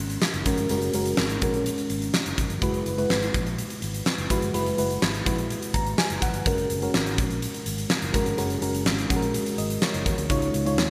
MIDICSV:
0, 0, Header, 1, 4, 480
1, 0, Start_track
1, 0, Key_signature, 6, "major"
1, 0, Tempo, 480000
1, 701, Time_signature, 4, 2, 24, 8
1, 10900, End_track
2, 0, Start_track
2, 0, Title_t, "FM electric piano"
2, 0, Program_c, 0, 5
2, 0, Control_c, 0, 64, 127
2, 0, Note_on_c, 0, 56, 72
2, 0, Note_on_c, 0, 61, 68
2, 0, Note_on_c, 0, 66, 69
2, 0, Note_on_c, 0, 70, 85
2, 453, Note_off_c, 0, 56, 0
2, 453, Note_on_c, 0, 56, 73
2, 459, Note_off_c, 0, 61, 0
2, 459, Note_on_c, 0, 61, 65
2, 464, Note_off_c, 0, 66, 0
2, 464, Note_on_c, 0, 66, 63
2, 466, Note_off_c, 0, 70, 0
2, 466, Note_on_c, 0, 70, 83
2, 661, Note_off_c, 0, 56, 0
2, 663, Note_off_c, 0, 61, 0
2, 666, Note_off_c, 0, 66, 0
2, 667, Note_off_c, 0, 70, 0
2, 696, Note_on_c, 0, 56, 76
2, 701, Note_on_c, 0, 61, 69
2, 704, Note_on_c, 0, 66, 71
2, 708, Note_on_c, 0, 70, 85
2, 902, Note_off_c, 0, 56, 0
2, 904, Note_off_c, 0, 61, 0
2, 906, Note_off_c, 0, 66, 0
2, 908, Note_off_c, 0, 70, 0
2, 935, Note_on_c, 0, 56, 75
2, 939, Note_on_c, 0, 61, 69
2, 943, Note_on_c, 0, 66, 73
2, 947, Note_on_c, 0, 70, 86
2, 1345, Note_off_c, 0, 56, 0
2, 1347, Note_off_c, 0, 61, 0
2, 1349, Note_off_c, 0, 66, 0
2, 1351, Note_off_c, 0, 70, 0
2, 1418, Note_on_c, 0, 56, 73
2, 1422, Note_on_c, 0, 61, 68
2, 1426, Note_on_c, 0, 66, 70
2, 1430, Note_on_c, 0, 70, 82
2, 2234, Note_off_c, 0, 56, 0
2, 2236, Note_off_c, 0, 61, 0
2, 2238, Note_off_c, 0, 66, 0
2, 2240, Note_off_c, 0, 70, 0
2, 2615, Note_on_c, 0, 56, 78
2, 2622, Note_on_c, 0, 64, 70
2, 2624, Note_on_c, 0, 66, 70
2, 2627, Note_on_c, 0, 71, 88
2, 2634, Control_c, 0, 64, 0
2, 2815, Control_c, 0, 64, 127
2, 2923, Note_off_c, 0, 56, 0
2, 2926, Note_off_c, 0, 64, 0
2, 2928, Note_off_c, 0, 66, 0
2, 2929, Note_off_c, 0, 71, 0
2, 2975, Note_on_c, 0, 56, 73
2, 2979, Note_on_c, 0, 64, 70
2, 2982, Note_on_c, 0, 66, 71
2, 2986, Note_on_c, 0, 71, 88
2, 3792, Note_off_c, 0, 56, 0
2, 3794, Note_off_c, 0, 64, 0
2, 3796, Note_off_c, 0, 66, 0
2, 3798, Note_off_c, 0, 71, 0
2, 4296, Note_on_c, 0, 56, 73
2, 4302, Note_on_c, 0, 64, 69
2, 4306, Note_on_c, 0, 66, 72
2, 4308, Note_on_c, 0, 71, 85
2, 4502, Note_off_c, 0, 56, 0
2, 4505, Note_off_c, 0, 64, 0
2, 4507, Note_off_c, 0, 66, 0
2, 4508, Note_off_c, 0, 71, 0
2, 4533, Note_on_c, 0, 56, 77
2, 4536, Note_on_c, 0, 64, 72
2, 4541, Note_on_c, 0, 66, 72
2, 4545, Note_on_c, 0, 71, 86
2, 4740, Note_off_c, 0, 56, 0
2, 4742, Note_off_c, 0, 64, 0
2, 4744, Note_off_c, 0, 66, 0
2, 4747, Note_off_c, 0, 71, 0
2, 4775, Note_on_c, 0, 56, 77
2, 4778, Note_on_c, 0, 64, 70
2, 4782, Note_on_c, 0, 66, 72
2, 4787, Note_on_c, 0, 71, 88
2, 5185, Note_off_c, 0, 56, 0
2, 5186, Note_off_c, 0, 64, 0
2, 5188, Note_off_c, 0, 66, 0
2, 5191, Note_off_c, 0, 71, 0
2, 5254, Note_on_c, 0, 56, 78
2, 5260, Note_on_c, 0, 64, 70
2, 5264, Note_on_c, 0, 66, 72
2, 5266, Note_on_c, 0, 71, 81
2, 5740, Note_on_c, 0, 82, 63
2, 5964, Note_off_c, 0, 82, 0
2, 5980, Note_on_c, 0, 80, 66
2, 6072, Note_off_c, 0, 56, 0
2, 6075, Note_off_c, 0, 64, 0
2, 6077, Note_off_c, 0, 66, 0
2, 6078, Note_off_c, 0, 71, 0
2, 6203, Note_off_c, 0, 80, 0
2, 6221, Note_on_c, 0, 78, 62
2, 6444, Note_off_c, 0, 78, 0
2, 6459, Note_on_c, 0, 56, 74
2, 6463, Note_on_c, 0, 61, 66
2, 6466, Note_on_c, 0, 66, 68
2, 6471, Note_on_c, 0, 70, 85
2, 6475, Control_c, 0, 64, 0
2, 6650, Control_c, 0, 64, 127
2, 6765, Note_off_c, 0, 56, 0
2, 6767, Note_off_c, 0, 61, 0
2, 6769, Note_off_c, 0, 66, 0
2, 6771, Note_off_c, 0, 70, 0
2, 6817, Note_on_c, 0, 56, 77
2, 6822, Note_on_c, 0, 61, 73
2, 6826, Note_on_c, 0, 66, 72
2, 6830, Note_on_c, 0, 70, 84
2, 7633, Note_off_c, 0, 56, 0
2, 7636, Note_off_c, 0, 61, 0
2, 7637, Note_off_c, 0, 66, 0
2, 7639, Note_off_c, 0, 70, 0
2, 8132, Note_on_c, 0, 56, 72
2, 8137, Note_on_c, 0, 61, 68
2, 8140, Note_on_c, 0, 66, 71
2, 8146, Note_on_c, 0, 70, 79
2, 8340, Note_off_c, 0, 56, 0
2, 8342, Note_off_c, 0, 61, 0
2, 8344, Note_off_c, 0, 66, 0
2, 8347, Note_off_c, 0, 70, 0
2, 8373, Note_on_c, 0, 56, 80
2, 8377, Note_on_c, 0, 61, 71
2, 8381, Note_on_c, 0, 66, 69
2, 8385, Note_on_c, 0, 70, 87
2, 8580, Note_off_c, 0, 56, 0
2, 8582, Note_off_c, 0, 61, 0
2, 8584, Note_off_c, 0, 66, 0
2, 8586, Note_off_c, 0, 70, 0
2, 8614, Note_on_c, 0, 56, 80
2, 8616, Note_on_c, 0, 61, 70
2, 8620, Note_on_c, 0, 66, 70
2, 8625, Note_on_c, 0, 70, 86
2, 9024, Note_off_c, 0, 56, 0
2, 9026, Note_off_c, 0, 61, 0
2, 9027, Note_off_c, 0, 66, 0
2, 9030, Note_off_c, 0, 70, 0
2, 9093, Note_on_c, 0, 56, 80
2, 9098, Note_on_c, 0, 61, 70
2, 9101, Note_on_c, 0, 66, 73
2, 9104, Note_on_c, 0, 68, 66
2, 9160, Note_off_c, 0, 68, 0
2, 9162, Note_on_c, 0, 70, 89
2, 9581, Note_off_c, 0, 66, 0
2, 9581, Note_on_c, 0, 75, 57
2, 9611, Note_off_c, 0, 70, 0
2, 9809, Note_off_c, 0, 75, 0
2, 9819, Note_on_c, 0, 73, 68
2, 9827, Note_on_c, 0, 70, 57
2, 9911, Note_off_c, 0, 56, 0
2, 9913, Note_off_c, 0, 61, 0
2, 10046, Note_off_c, 0, 70, 0
2, 10048, Note_off_c, 0, 73, 0
2, 10058, Note_on_c, 0, 70, 57
2, 10065, Note_on_c, 0, 66, 50
2, 10295, Note_on_c, 0, 56, 77
2, 10300, Note_on_c, 0, 63, 74
2, 10301, Note_on_c, 0, 49, 72
2, 10303, Note_on_c, 0, 65, 73
2, 10307, Note_on_c, 0, 73, 88
2, 10312, Control_c, 0, 64, 0
2, 10504, Control_c, 0, 64, 127
2, 10516, Note_off_c, 0, 70, 0
2, 10519, Note_off_c, 0, 66, 0
2, 10603, Note_off_c, 0, 56, 0
2, 10606, Note_off_c, 0, 63, 0
2, 10607, Note_off_c, 0, 65, 0
2, 10609, Note_off_c, 0, 73, 0
2, 10653, Note_on_c, 0, 56, 79
2, 10656, Note_on_c, 0, 63, 72
2, 10661, Note_on_c, 0, 65, 73
2, 10664, Note_on_c, 0, 73, 90
2, 10900, Note_off_c, 0, 49, 0
2, 10900, Note_off_c, 0, 56, 0
2, 10900, Note_off_c, 0, 63, 0
2, 10900, Note_off_c, 0, 65, 0
2, 10900, Note_off_c, 0, 73, 0
2, 10900, End_track
3, 0, Start_track
3, 0, Title_t, "Fingered electric bass"
3, 0, Program_c, 1, 33
3, 0, Note_on_c, 1, 32, 79
3, 159, Note_off_c, 1, 32, 0
3, 338, Note_on_c, 1, 30, 77
3, 429, Note_off_c, 1, 30, 0
3, 458, Note_on_c, 1, 32, 87
3, 549, Note_off_c, 1, 32, 0
3, 578, Note_on_c, 1, 31, 78
3, 669, Note_off_c, 1, 31, 0
3, 700, Note_on_c, 1, 30, 94
3, 880, Note_off_c, 1, 30, 0
3, 940, Note_on_c, 1, 30, 80
3, 1120, Note_off_c, 1, 30, 0
3, 1179, Note_on_c, 1, 32, 81
3, 1360, Note_off_c, 1, 32, 0
3, 1420, Note_on_c, 1, 34, 82
3, 1690, Note_off_c, 1, 34, 0
3, 1900, Note_on_c, 1, 32, 79
3, 2081, Note_off_c, 1, 32, 0
3, 2262, Note_on_c, 1, 30, 65
3, 2352, Note_off_c, 1, 30, 0
3, 2379, Note_on_c, 1, 32, 86
3, 2470, Note_off_c, 1, 32, 0
3, 2500, Note_on_c, 1, 31, 81
3, 2590, Note_off_c, 1, 31, 0
3, 2619, Note_on_c, 1, 30, 95
3, 2800, Note_off_c, 1, 30, 0
3, 2860, Note_on_c, 1, 30, 95
3, 3040, Note_off_c, 1, 30, 0
3, 3101, Note_on_c, 1, 32, 84
3, 3281, Note_off_c, 1, 32, 0
3, 3345, Note_on_c, 1, 34, 90
3, 3613, Note_off_c, 1, 34, 0
3, 3821, Note_on_c, 1, 32, 79
3, 4001, Note_off_c, 1, 32, 0
3, 4181, Note_on_c, 1, 30, 88
3, 4271, Note_off_c, 1, 30, 0
3, 4303, Note_on_c, 1, 32, 89
3, 4392, Note_off_c, 1, 32, 0
3, 4422, Note_on_c, 1, 31, 80
3, 4511, Note_off_c, 1, 31, 0
3, 4542, Note_on_c, 1, 30, 84
3, 4721, Note_off_c, 1, 30, 0
3, 4782, Note_on_c, 1, 30, 91
3, 4962, Note_off_c, 1, 30, 0
3, 5020, Note_on_c, 1, 32, 86
3, 5200, Note_off_c, 1, 32, 0
3, 5264, Note_on_c, 1, 34, 74
3, 5533, Note_off_c, 1, 34, 0
3, 5742, Note_on_c, 1, 32, 77
3, 5922, Note_off_c, 1, 32, 0
3, 6101, Note_on_c, 1, 30, 75
3, 6191, Note_off_c, 1, 30, 0
3, 6220, Note_on_c, 1, 32, 86
3, 6310, Note_off_c, 1, 32, 0
3, 6338, Note_on_c, 1, 31, 72
3, 6429, Note_off_c, 1, 31, 0
3, 6460, Note_on_c, 1, 30, 91
3, 6640, Note_off_c, 1, 30, 0
3, 6698, Note_on_c, 1, 30, 88
3, 6879, Note_off_c, 1, 30, 0
3, 6937, Note_on_c, 1, 32, 79
3, 7183, Note_off_c, 1, 32, 0
3, 7183, Note_on_c, 1, 34, 89
3, 7452, Note_off_c, 1, 34, 0
3, 7660, Note_on_c, 1, 32, 77
3, 7841, Note_off_c, 1, 32, 0
3, 8020, Note_on_c, 1, 30, 78
3, 8111, Note_off_c, 1, 30, 0
3, 8141, Note_on_c, 1, 32, 94
3, 8231, Note_off_c, 1, 32, 0
3, 8257, Note_on_c, 1, 31, 76
3, 8348, Note_off_c, 1, 31, 0
3, 8377, Note_on_c, 1, 30, 97
3, 8558, Note_off_c, 1, 30, 0
3, 8616, Note_on_c, 1, 30, 96
3, 8856, Note_off_c, 1, 30, 0
3, 8856, Note_on_c, 1, 32, 81
3, 9038, Note_off_c, 1, 32, 0
3, 9103, Note_on_c, 1, 34, 79
3, 9372, Note_off_c, 1, 34, 0
3, 9580, Note_on_c, 1, 32, 72
3, 9760, Note_off_c, 1, 32, 0
3, 9940, Note_on_c, 1, 30, 81
3, 10030, Note_off_c, 1, 30, 0
3, 10060, Note_on_c, 1, 39, 82
3, 10150, Note_off_c, 1, 39, 0
3, 10179, Note_on_c, 1, 38, 78
3, 10270, Note_off_c, 1, 38, 0
3, 10299, Note_on_c, 1, 37, 91
3, 10480, Note_off_c, 1, 37, 0
3, 10542, Note_on_c, 1, 37, 84
3, 10781, Note_off_c, 1, 37, 0
3, 10781, Note_on_c, 1, 39, 88
3, 10900, Note_off_c, 1, 39, 0
3, 10900, End_track
4, 0, Start_track
4, 0, Title_t, "Drums"
4, 98, Note_on_c, 9, 42, 46
4, 198, Note_off_c, 9, 42, 0
4, 216, Note_on_c, 9, 38, 101
4, 316, Note_off_c, 9, 38, 0
4, 337, Note_on_c, 9, 42, 50
4, 437, Note_off_c, 9, 42, 0
4, 456, Note_on_c, 9, 42, 65
4, 458, Note_on_c, 9, 36, 82
4, 556, Note_off_c, 9, 42, 0
4, 558, Note_off_c, 9, 36, 0
4, 575, Note_on_c, 9, 42, 49
4, 675, Note_off_c, 9, 42, 0
4, 694, Note_on_c, 9, 42, 78
4, 794, Note_off_c, 9, 42, 0
4, 816, Note_on_c, 9, 42, 47
4, 916, Note_off_c, 9, 42, 0
4, 935, Note_on_c, 9, 42, 66
4, 1035, Note_off_c, 9, 42, 0
4, 1056, Note_on_c, 9, 42, 47
4, 1156, Note_off_c, 9, 42, 0
4, 1173, Note_on_c, 9, 38, 108
4, 1273, Note_off_c, 9, 38, 0
4, 1296, Note_on_c, 9, 42, 48
4, 1396, Note_off_c, 9, 42, 0
4, 1417, Note_on_c, 9, 42, 66
4, 1420, Note_on_c, 9, 36, 91
4, 1517, Note_off_c, 9, 42, 0
4, 1520, Note_off_c, 9, 36, 0
4, 1537, Note_on_c, 9, 42, 49
4, 1637, Note_off_c, 9, 42, 0
4, 1660, Note_on_c, 9, 42, 75
4, 1760, Note_off_c, 9, 42, 0
4, 1779, Note_on_c, 9, 42, 49
4, 1879, Note_off_c, 9, 42, 0
4, 1898, Note_on_c, 9, 42, 65
4, 1998, Note_off_c, 9, 42, 0
4, 2019, Note_on_c, 9, 42, 46
4, 2119, Note_off_c, 9, 42, 0
4, 2137, Note_on_c, 9, 38, 98
4, 2237, Note_off_c, 9, 38, 0
4, 2259, Note_on_c, 9, 42, 50
4, 2359, Note_off_c, 9, 42, 0
4, 2380, Note_on_c, 9, 36, 80
4, 2380, Note_on_c, 9, 42, 69
4, 2480, Note_off_c, 9, 36, 0
4, 2480, Note_off_c, 9, 42, 0
4, 2499, Note_on_c, 9, 42, 48
4, 2599, Note_off_c, 9, 42, 0
4, 2618, Note_on_c, 9, 42, 78
4, 2619, Note_on_c, 9, 36, 98
4, 2718, Note_off_c, 9, 42, 0
4, 2719, Note_off_c, 9, 36, 0
4, 2738, Note_on_c, 9, 42, 47
4, 2838, Note_off_c, 9, 42, 0
4, 2861, Note_on_c, 9, 42, 64
4, 2961, Note_off_c, 9, 42, 0
4, 2983, Note_on_c, 9, 42, 48
4, 3083, Note_off_c, 9, 42, 0
4, 3101, Note_on_c, 9, 38, 105
4, 3201, Note_off_c, 9, 38, 0
4, 3224, Note_on_c, 9, 42, 45
4, 3324, Note_off_c, 9, 42, 0
4, 3344, Note_on_c, 9, 36, 91
4, 3344, Note_on_c, 9, 42, 68
4, 3444, Note_off_c, 9, 36, 0
4, 3444, Note_off_c, 9, 42, 0
4, 3465, Note_on_c, 9, 42, 47
4, 3565, Note_off_c, 9, 42, 0
4, 3585, Note_on_c, 9, 42, 76
4, 3685, Note_off_c, 9, 42, 0
4, 3703, Note_on_c, 9, 42, 48
4, 3803, Note_off_c, 9, 42, 0
4, 3822, Note_on_c, 9, 42, 69
4, 3922, Note_off_c, 9, 42, 0
4, 3943, Note_on_c, 9, 42, 48
4, 4043, Note_off_c, 9, 42, 0
4, 4061, Note_on_c, 9, 38, 101
4, 4161, Note_off_c, 9, 38, 0
4, 4182, Note_on_c, 9, 42, 49
4, 4282, Note_off_c, 9, 42, 0
4, 4302, Note_on_c, 9, 36, 80
4, 4303, Note_on_c, 9, 42, 68
4, 4402, Note_off_c, 9, 36, 0
4, 4403, Note_off_c, 9, 42, 0
4, 4422, Note_on_c, 9, 42, 47
4, 4522, Note_off_c, 9, 42, 0
4, 4543, Note_on_c, 9, 42, 75
4, 4643, Note_off_c, 9, 42, 0
4, 4664, Note_on_c, 9, 42, 48
4, 4764, Note_off_c, 9, 42, 0
4, 4783, Note_on_c, 9, 42, 64
4, 4883, Note_off_c, 9, 42, 0
4, 4906, Note_on_c, 9, 42, 46
4, 5006, Note_off_c, 9, 42, 0
4, 5022, Note_on_c, 9, 38, 103
4, 5122, Note_off_c, 9, 38, 0
4, 5144, Note_on_c, 9, 42, 45
4, 5244, Note_off_c, 9, 42, 0
4, 5263, Note_on_c, 9, 42, 65
4, 5264, Note_on_c, 9, 36, 86
4, 5363, Note_off_c, 9, 42, 0
4, 5364, Note_off_c, 9, 36, 0
4, 5384, Note_on_c, 9, 42, 47
4, 5484, Note_off_c, 9, 42, 0
4, 5504, Note_on_c, 9, 42, 73
4, 5604, Note_off_c, 9, 42, 0
4, 5625, Note_on_c, 9, 42, 52
4, 5725, Note_off_c, 9, 42, 0
4, 5742, Note_on_c, 9, 36, 83
4, 5742, Note_on_c, 9, 42, 64
4, 5842, Note_off_c, 9, 36, 0
4, 5842, Note_off_c, 9, 42, 0
4, 5866, Note_on_c, 9, 42, 48
4, 5966, Note_off_c, 9, 42, 0
4, 5981, Note_on_c, 9, 38, 98
4, 6081, Note_off_c, 9, 38, 0
4, 6100, Note_on_c, 9, 42, 52
4, 6200, Note_off_c, 9, 42, 0
4, 6220, Note_on_c, 9, 36, 77
4, 6220, Note_on_c, 9, 42, 66
4, 6320, Note_off_c, 9, 36, 0
4, 6320, Note_off_c, 9, 42, 0
4, 6337, Note_on_c, 9, 42, 52
4, 6437, Note_off_c, 9, 42, 0
4, 6459, Note_on_c, 9, 42, 78
4, 6460, Note_on_c, 9, 36, 104
4, 6559, Note_off_c, 9, 42, 0
4, 6560, Note_off_c, 9, 36, 0
4, 6579, Note_on_c, 9, 42, 47
4, 6679, Note_off_c, 9, 42, 0
4, 6700, Note_on_c, 9, 42, 65
4, 6799, Note_off_c, 9, 42, 0
4, 6823, Note_on_c, 9, 42, 48
4, 6923, Note_off_c, 9, 42, 0
4, 6942, Note_on_c, 9, 38, 100
4, 7042, Note_off_c, 9, 38, 0
4, 7063, Note_on_c, 9, 42, 46
4, 7163, Note_off_c, 9, 42, 0
4, 7182, Note_on_c, 9, 42, 69
4, 7183, Note_on_c, 9, 36, 91
4, 7282, Note_off_c, 9, 42, 0
4, 7283, Note_off_c, 9, 36, 0
4, 7304, Note_on_c, 9, 42, 50
4, 7404, Note_off_c, 9, 42, 0
4, 7424, Note_on_c, 9, 42, 75
4, 7524, Note_off_c, 9, 42, 0
4, 7544, Note_on_c, 9, 42, 50
4, 7644, Note_off_c, 9, 42, 0
4, 7660, Note_on_c, 9, 42, 68
4, 7760, Note_off_c, 9, 42, 0
4, 7782, Note_on_c, 9, 42, 49
4, 7881, Note_off_c, 9, 42, 0
4, 7899, Note_on_c, 9, 38, 101
4, 7999, Note_off_c, 9, 38, 0
4, 8022, Note_on_c, 9, 42, 48
4, 8121, Note_off_c, 9, 42, 0
4, 8141, Note_on_c, 9, 36, 81
4, 8143, Note_on_c, 9, 42, 71
4, 8241, Note_off_c, 9, 36, 0
4, 8243, Note_off_c, 9, 42, 0
4, 8260, Note_on_c, 9, 42, 50
4, 8360, Note_off_c, 9, 42, 0
4, 8381, Note_on_c, 9, 42, 77
4, 8481, Note_off_c, 9, 42, 0
4, 8501, Note_on_c, 9, 42, 50
4, 8601, Note_off_c, 9, 42, 0
4, 8620, Note_on_c, 9, 42, 65
4, 8720, Note_off_c, 9, 42, 0
4, 8746, Note_on_c, 9, 42, 48
4, 8846, Note_off_c, 9, 42, 0
4, 8861, Note_on_c, 9, 38, 105
4, 8961, Note_off_c, 9, 38, 0
4, 8985, Note_on_c, 9, 42, 48
4, 9085, Note_off_c, 9, 42, 0
4, 9103, Note_on_c, 9, 36, 87
4, 9103, Note_on_c, 9, 42, 66
4, 9203, Note_off_c, 9, 36, 0
4, 9203, Note_off_c, 9, 42, 0
4, 9223, Note_on_c, 9, 42, 48
4, 9323, Note_off_c, 9, 42, 0
4, 9344, Note_on_c, 9, 42, 76
4, 9444, Note_off_c, 9, 42, 0
4, 9462, Note_on_c, 9, 42, 52
4, 9562, Note_off_c, 9, 42, 0
4, 9582, Note_on_c, 9, 42, 68
4, 9682, Note_off_c, 9, 42, 0
4, 9702, Note_on_c, 9, 42, 46
4, 9802, Note_off_c, 9, 42, 0
4, 9819, Note_on_c, 9, 38, 102
4, 9919, Note_off_c, 9, 38, 0
4, 9941, Note_on_c, 9, 42, 52
4, 10041, Note_off_c, 9, 42, 0
4, 10060, Note_on_c, 9, 36, 79
4, 10062, Note_on_c, 9, 42, 66
4, 10160, Note_off_c, 9, 36, 0
4, 10162, Note_off_c, 9, 42, 0
4, 10181, Note_on_c, 9, 42, 51
4, 10281, Note_off_c, 9, 42, 0
4, 10299, Note_on_c, 9, 36, 98
4, 10299, Note_on_c, 9, 42, 80
4, 10399, Note_off_c, 9, 36, 0
4, 10399, Note_off_c, 9, 42, 0
4, 10421, Note_on_c, 9, 42, 47
4, 10521, Note_off_c, 9, 42, 0
4, 10541, Note_on_c, 9, 42, 67
4, 10641, Note_off_c, 9, 42, 0
4, 10664, Note_on_c, 9, 42, 49
4, 10764, Note_off_c, 9, 42, 0
4, 10781, Note_on_c, 9, 38, 106
4, 10881, Note_off_c, 9, 38, 0
4, 10900, End_track
0, 0, End_of_file